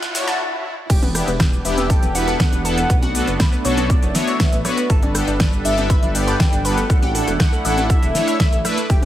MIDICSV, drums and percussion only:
0, 0, Header, 1, 2, 480
1, 0, Start_track
1, 0, Tempo, 500000
1, 863, Time_signature, 4, 2, 24, 8
1, 8688, End_track
2, 0, Start_track
2, 0, Title_t, "Drums"
2, 24, Note_on_c, 9, 38, 93
2, 24, Note_on_c, 9, 42, 42
2, 28, Note_on_c, 9, 82, 32
2, 120, Note_off_c, 9, 38, 0
2, 120, Note_off_c, 9, 42, 0
2, 124, Note_off_c, 9, 82, 0
2, 143, Note_on_c, 9, 38, 107
2, 143, Note_on_c, 9, 46, 107
2, 147, Note_on_c, 9, 82, 85
2, 239, Note_off_c, 9, 38, 0
2, 239, Note_off_c, 9, 46, 0
2, 243, Note_off_c, 9, 82, 0
2, 265, Note_on_c, 9, 38, 92
2, 265, Note_on_c, 9, 42, 43
2, 268, Note_on_c, 9, 82, 37
2, 361, Note_off_c, 9, 38, 0
2, 361, Note_off_c, 9, 42, 0
2, 364, Note_off_c, 9, 82, 0
2, 862, Note_on_c, 9, 36, 116
2, 863, Note_on_c, 9, 42, 67
2, 863, Note_on_c, 9, 49, 108
2, 867, Note_on_c, 9, 82, 43
2, 958, Note_off_c, 9, 36, 0
2, 959, Note_off_c, 9, 42, 0
2, 959, Note_off_c, 9, 49, 0
2, 963, Note_off_c, 9, 82, 0
2, 984, Note_on_c, 9, 63, 92
2, 985, Note_on_c, 9, 42, 40
2, 1080, Note_off_c, 9, 63, 0
2, 1081, Note_off_c, 9, 42, 0
2, 1104, Note_on_c, 9, 37, 79
2, 1104, Note_on_c, 9, 46, 100
2, 1107, Note_on_c, 9, 82, 77
2, 1200, Note_off_c, 9, 37, 0
2, 1200, Note_off_c, 9, 46, 0
2, 1203, Note_off_c, 9, 82, 0
2, 1226, Note_on_c, 9, 42, 54
2, 1230, Note_on_c, 9, 82, 35
2, 1322, Note_off_c, 9, 42, 0
2, 1326, Note_off_c, 9, 82, 0
2, 1343, Note_on_c, 9, 36, 122
2, 1344, Note_on_c, 9, 37, 80
2, 1344, Note_on_c, 9, 42, 70
2, 1345, Note_on_c, 9, 38, 127
2, 1348, Note_on_c, 9, 82, 46
2, 1439, Note_off_c, 9, 36, 0
2, 1440, Note_off_c, 9, 37, 0
2, 1440, Note_off_c, 9, 42, 0
2, 1441, Note_off_c, 9, 38, 0
2, 1444, Note_off_c, 9, 82, 0
2, 1469, Note_on_c, 9, 82, 32
2, 1565, Note_off_c, 9, 82, 0
2, 1584, Note_on_c, 9, 46, 87
2, 1587, Note_on_c, 9, 82, 80
2, 1680, Note_off_c, 9, 46, 0
2, 1683, Note_off_c, 9, 82, 0
2, 1704, Note_on_c, 9, 63, 102
2, 1705, Note_on_c, 9, 42, 56
2, 1708, Note_on_c, 9, 82, 34
2, 1800, Note_off_c, 9, 63, 0
2, 1801, Note_off_c, 9, 42, 0
2, 1804, Note_off_c, 9, 82, 0
2, 1823, Note_on_c, 9, 36, 119
2, 1824, Note_on_c, 9, 42, 67
2, 1827, Note_on_c, 9, 82, 46
2, 1919, Note_off_c, 9, 36, 0
2, 1920, Note_off_c, 9, 42, 0
2, 1923, Note_off_c, 9, 82, 0
2, 1944, Note_on_c, 9, 64, 76
2, 1945, Note_on_c, 9, 42, 39
2, 1949, Note_on_c, 9, 82, 30
2, 2040, Note_off_c, 9, 64, 0
2, 2041, Note_off_c, 9, 42, 0
2, 2045, Note_off_c, 9, 82, 0
2, 2064, Note_on_c, 9, 46, 106
2, 2067, Note_on_c, 9, 82, 80
2, 2160, Note_off_c, 9, 46, 0
2, 2163, Note_off_c, 9, 82, 0
2, 2185, Note_on_c, 9, 42, 55
2, 2189, Note_on_c, 9, 82, 33
2, 2281, Note_off_c, 9, 42, 0
2, 2285, Note_off_c, 9, 82, 0
2, 2303, Note_on_c, 9, 36, 124
2, 2304, Note_on_c, 9, 38, 123
2, 2304, Note_on_c, 9, 42, 67
2, 2308, Note_on_c, 9, 82, 45
2, 2399, Note_off_c, 9, 36, 0
2, 2400, Note_off_c, 9, 38, 0
2, 2400, Note_off_c, 9, 42, 0
2, 2404, Note_off_c, 9, 82, 0
2, 2425, Note_on_c, 9, 42, 39
2, 2429, Note_on_c, 9, 82, 33
2, 2521, Note_off_c, 9, 42, 0
2, 2525, Note_off_c, 9, 82, 0
2, 2544, Note_on_c, 9, 46, 91
2, 2548, Note_on_c, 9, 82, 73
2, 2640, Note_off_c, 9, 46, 0
2, 2644, Note_off_c, 9, 82, 0
2, 2665, Note_on_c, 9, 42, 57
2, 2668, Note_on_c, 9, 82, 33
2, 2761, Note_off_c, 9, 42, 0
2, 2764, Note_off_c, 9, 82, 0
2, 2783, Note_on_c, 9, 36, 126
2, 2783, Note_on_c, 9, 42, 67
2, 2787, Note_on_c, 9, 82, 42
2, 2879, Note_off_c, 9, 36, 0
2, 2879, Note_off_c, 9, 42, 0
2, 2883, Note_off_c, 9, 82, 0
2, 2904, Note_on_c, 9, 63, 94
2, 2905, Note_on_c, 9, 42, 39
2, 3000, Note_off_c, 9, 63, 0
2, 3001, Note_off_c, 9, 42, 0
2, 3023, Note_on_c, 9, 46, 109
2, 3027, Note_on_c, 9, 82, 72
2, 3119, Note_off_c, 9, 46, 0
2, 3123, Note_off_c, 9, 82, 0
2, 3144, Note_on_c, 9, 42, 55
2, 3148, Note_on_c, 9, 82, 34
2, 3240, Note_off_c, 9, 42, 0
2, 3244, Note_off_c, 9, 82, 0
2, 3262, Note_on_c, 9, 37, 79
2, 3262, Note_on_c, 9, 38, 127
2, 3262, Note_on_c, 9, 42, 69
2, 3263, Note_on_c, 9, 36, 124
2, 3266, Note_on_c, 9, 82, 44
2, 3358, Note_off_c, 9, 37, 0
2, 3358, Note_off_c, 9, 38, 0
2, 3358, Note_off_c, 9, 42, 0
2, 3359, Note_off_c, 9, 36, 0
2, 3362, Note_off_c, 9, 82, 0
2, 3387, Note_on_c, 9, 82, 31
2, 3483, Note_off_c, 9, 82, 0
2, 3502, Note_on_c, 9, 46, 90
2, 3506, Note_on_c, 9, 82, 71
2, 3598, Note_off_c, 9, 46, 0
2, 3602, Note_off_c, 9, 82, 0
2, 3624, Note_on_c, 9, 42, 56
2, 3624, Note_on_c, 9, 63, 100
2, 3627, Note_on_c, 9, 82, 34
2, 3720, Note_off_c, 9, 42, 0
2, 3720, Note_off_c, 9, 63, 0
2, 3723, Note_off_c, 9, 82, 0
2, 3743, Note_on_c, 9, 36, 122
2, 3743, Note_on_c, 9, 42, 67
2, 3747, Note_on_c, 9, 82, 44
2, 3839, Note_off_c, 9, 36, 0
2, 3839, Note_off_c, 9, 42, 0
2, 3843, Note_off_c, 9, 82, 0
2, 3864, Note_on_c, 9, 42, 36
2, 3868, Note_on_c, 9, 82, 30
2, 3960, Note_off_c, 9, 42, 0
2, 3964, Note_off_c, 9, 82, 0
2, 3982, Note_on_c, 9, 46, 115
2, 3983, Note_on_c, 9, 38, 70
2, 3983, Note_on_c, 9, 64, 87
2, 3986, Note_on_c, 9, 82, 78
2, 4078, Note_off_c, 9, 46, 0
2, 4079, Note_off_c, 9, 38, 0
2, 4079, Note_off_c, 9, 64, 0
2, 4082, Note_off_c, 9, 82, 0
2, 4104, Note_on_c, 9, 42, 57
2, 4107, Note_on_c, 9, 82, 33
2, 4200, Note_off_c, 9, 42, 0
2, 4203, Note_off_c, 9, 82, 0
2, 4223, Note_on_c, 9, 36, 126
2, 4223, Note_on_c, 9, 38, 124
2, 4223, Note_on_c, 9, 42, 66
2, 4226, Note_on_c, 9, 82, 42
2, 4319, Note_off_c, 9, 36, 0
2, 4319, Note_off_c, 9, 38, 0
2, 4319, Note_off_c, 9, 42, 0
2, 4322, Note_off_c, 9, 82, 0
2, 4344, Note_on_c, 9, 42, 40
2, 4348, Note_on_c, 9, 82, 32
2, 4440, Note_off_c, 9, 42, 0
2, 4444, Note_off_c, 9, 82, 0
2, 4462, Note_on_c, 9, 37, 63
2, 4462, Note_on_c, 9, 46, 89
2, 4463, Note_on_c, 9, 64, 87
2, 4466, Note_on_c, 9, 82, 70
2, 4558, Note_off_c, 9, 37, 0
2, 4558, Note_off_c, 9, 46, 0
2, 4559, Note_off_c, 9, 64, 0
2, 4562, Note_off_c, 9, 82, 0
2, 4584, Note_on_c, 9, 42, 53
2, 4588, Note_on_c, 9, 82, 33
2, 4680, Note_off_c, 9, 42, 0
2, 4684, Note_off_c, 9, 82, 0
2, 4702, Note_on_c, 9, 42, 62
2, 4703, Note_on_c, 9, 36, 127
2, 4706, Note_on_c, 9, 82, 42
2, 4798, Note_off_c, 9, 42, 0
2, 4799, Note_off_c, 9, 36, 0
2, 4802, Note_off_c, 9, 82, 0
2, 4824, Note_on_c, 9, 42, 36
2, 4824, Note_on_c, 9, 63, 88
2, 4920, Note_off_c, 9, 42, 0
2, 4920, Note_off_c, 9, 63, 0
2, 4943, Note_on_c, 9, 37, 85
2, 4943, Note_on_c, 9, 46, 116
2, 4946, Note_on_c, 9, 82, 75
2, 5039, Note_off_c, 9, 37, 0
2, 5039, Note_off_c, 9, 46, 0
2, 5042, Note_off_c, 9, 82, 0
2, 5064, Note_on_c, 9, 42, 54
2, 5068, Note_on_c, 9, 82, 32
2, 5160, Note_off_c, 9, 42, 0
2, 5164, Note_off_c, 9, 82, 0
2, 5183, Note_on_c, 9, 36, 127
2, 5183, Note_on_c, 9, 37, 82
2, 5183, Note_on_c, 9, 38, 125
2, 5183, Note_on_c, 9, 42, 68
2, 5187, Note_on_c, 9, 82, 43
2, 5279, Note_off_c, 9, 36, 0
2, 5279, Note_off_c, 9, 37, 0
2, 5279, Note_off_c, 9, 38, 0
2, 5279, Note_off_c, 9, 42, 0
2, 5283, Note_off_c, 9, 82, 0
2, 5308, Note_on_c, 9, 82, 31
2, 5404, Note_off_c, 9, 82, 0
2, 5424, Note_on_c, 9, 46, 98
2, 5427, Note_on_c, 9, 82, 69
2, 5520, Note_off_c, 9, 46, 0
2, 5523, Note_off_c, 9, 82, 0
2, 5544, Note_on_c, 9, 63, 93
2, 5545, Note_on_c, 9, 42, 53
2, 5548, Note_on_c, 9, 82, 34
2, 5640, Note_off_c, 9, 63, 0
2, 5641, Note_off_c, 9, 42, 0
2, 5644, Note_off_c, 9, 82, 0
2, 5663, Note_on_c, 9, 36, 124
2, 5664, Note_on_c, 9, 42, 65
2, 5667, Note_on_c, 9, 82, 43
2, 5759, Note_off_c, 9, 36, 0
2, 5760, Note_off_c, 9, 42, 0
2, 5763, Note_off_c, 9, 82, 0
2, 5784, Note_on_c, 9, 64, 81
2, 5785, Note_on_c, 9, 42, 36
2, 5789, Note_on_c, 9, 82, 30
2, 5880, Note_off_c, 9, 64, 0
2, 5881, Note_off_c, 9, 42, 0
2, 5885, Note_off_c, 9, 82, 0
2, 5903, Note_on_c, 9, 46, 117
2, 5907, Note_on_c, 9, 82, 79
2, 5999, Note_off_c, 9, 46, 0
2, 6003, Note_off_c, 9, 82, 0
2, 6025, Note_on_c, 9, 42, 52
2, 6029, Note_on_c, 9, 82, 32
2, 6121, Note_off_c, 9, 42, 0
2, 6125, Note_off_c, 9, 82, 0
2, 6143, Note_on_c, 9, 36, 125
2, 6144, Note_on_c, 9, 42, 62
2, 6145, Note_on_c, 9, 38, 117
2, 6148, Note_on_c, 9, 82, 43
2, 6239, Note_off_c, 9, 36, 0
2, 6240, Note_off_c, 9, 42, 0
2, 6241, Note_off_c, 9, 38, 0
2, 6244, Note_off_c, 9, 82, 0
2, 6265, Note_on_c, 9, 42, 38
2, 6269, Note_on_c, 9, 82, 31
2, 6361, Note_off_c, 9, 42, 0
2, 6365, Note_off_c, 9, 82, 0
2, 6384, Note_on_c, 9, 46, 90
2, 6387, Note_on_c, 9, 82, 70
2, 6480, Note_off_c, 9, 46, 0
2, 6483, Note_off_c, 9, 82, 0
2, 6505, Note_on_c, 9, 42, 52
2, 6508, Note_on_c, 9, 82, 33
2, 6601, Note_off_c, 9, 42, 0
2, 6604, Note_off_c, 9, 82, 0
2, 6623, Note_on_c, 9, 36, 122
2, 6624, Note_on_c, 9, 42, 63
2, 6627, Note_on_c, 9, 82, 41
2, 6719, Note_off_c, 9, 36, 0
2, 6720, Note_off_c, 9, 42, 0
2, 6723, Note_off_c, 9, 82, 0
2, 6744, Note_on_c, 9, 63, 92
2, 6745, Note_on_c, 9, 42, 37
2, 6840, Note_off_c, 9, 63, 0
2, 6841, Note_off_c, 9, 42, 0
2, 6864, Note_on_c, 9, 46, 109
2, 6867, Note_on_c, 9, 82, 78
2, 6960, Note_off_c, 9, 46, 0
2, 6963, Note_off_c, 9, 82, 0
2, 6985, Note_on_c, 9, 42, 50
2, 6988, Note_on_c, 9, 82, 33
2, 7081, Note_off_c, 9, 42, 0
2, 7084, Note_off_c, 9, 82, 0
2, 7103, Note_on_c, 9, 36, 127
2, 7104, Note_on_c, 9, 37, 89
2, 7104, Note_on_c, 9, 38, 118
2, 7104, Note_on_c, 9, 42, 65
2, 7108, Note_on_c, 9, 82, 45
2, 7199, Note_off_c, 9, 36, 0
2, 7200, Note_off_c, 9, 37, 0
2, 7200, Note_off_c, 9, 38, 0
2, 7200, Note_off_c, 9, 42, 0
2, 7204, Note_off_c, 9, 82, 0
2, 7229, Note_on_c, 9, 82, 31
2, 7325, Note_off_c, 9, 82, 0
2, 7343, Note_on_c, 9, 46, 93
2, 7347, Note_on_c, 9, 82, 73
2, 7439, Note_off_c, 9, 46, 0
2, 7443, Note_off_c, 9, 82, 0
2, 7464, Note_on_c, 9, 63, 94
2, 7465, Note_on_c, 9, 42, 53
2, 7469, Note_on_c, 9, 82, 35
2, 7560, Note_off_c, 9, 63, 0
2, 7561, Note_off_c, 9, 42, 0
2, 7565, Note_off_c, 9, 82, 0
2, 7583, Note_on_c, 9, 36, 124
2, 7584, Note_on_c, 9, 42, 63
2, 7588, Note_on_c, 9, 82, 43
2, 7679, Note_off_c, 9, 36, 0
2, 7680, Note_off_c, 9, 42, 0
2, 7684, Note_off_c, 9, 82, 0
2, 7705, Note_on_c, 9, 42, 34
2, 7709, Note_on_c, 9, 82, 31
2, 7801, Note_off_c, 9, 42, 0
2, 7805, Note_off_c, 9, 82, 0
2, 7823, Note_on_c, 9, 64, 86
2, 7824, Note_on_c, 9, 38, 61
2, 7824, Note_on_c, 9, 46, 112
2, 7828, Note_on_c, 9, 82, 81
2, 7919, Note_off_c, 9, 64, 0
2, 7920, Note_off_c, 9, 38, 0
2, 7920, Note_off_c, 9, 46, 0
2, 7924, Note_off_c, 9, 82, 0
2, 7946, Note_on_c, 9, 42, 52
2, 7949, Note_on_c, 9, 82, 33
2, 8042, Note_off_c, 9, 42, 0
2, 8045, Note_off_c, 9, 82, 0
2, 8063, Note_on_c, 9, 36, 127
2, 8064, Note_on_c, 9, 38, 113
2, 8064, Note_on_c, 9, 42, 61
2, 8067, Note_on_c, 9, 82, 44
2, 8159, Note_off_c, 9, 36, 0
2, 8160, Note_off_c, 9, 38, 0
2, 8160, Note_off_c, 9, 42, 0
2, 8163, Note_off_c, 9, 82, 0
2, 8184, Note_on_c, 9, 42, 35
2, 8188, Note_on_c, 9, 82, 31
2, 8280, Note_off_c, 9, 42, 0
2, 8284, Note_off_c, 9, 82, 0
2, 8302, Note_on_c, 9, 37, 65
2, 8302, Note_on_c, 9, 46, 89
2, 8303, Note_on_c, 9, 64, 89
2, 8306, Note_on_c, 9, 82, 72
2, 8398, Note_off_c, 9, 37, 0
2, 8398, Note_off_c, 9, 46, 0
2, 8399, Note_off_c, 9, 64, 0
2, 8402, Note_off_c, 9, 82, 0
2, 8424, Note_on_c, 9, 42, 52
2, 8428, Note_on_c, 9, 82, 35
2, 8520, Note_off_c, 9, 42, 0
2, 8524, Note_off_c, 9, 82, 0
2, 8542, Note_on_c, 9, 36, 124
2, 8543, Note_on_c, 9, 42, 60
2, 8547, Note_on_c, 9, 82, 45
2, 8638, Note_off_c, 9, 36, 0
2, 8639, Note_off_c, 9, 42, 0
2, 8643, Note_off_c, 9, 82, 0
2, 8688, End_track
0, 0, End_of_file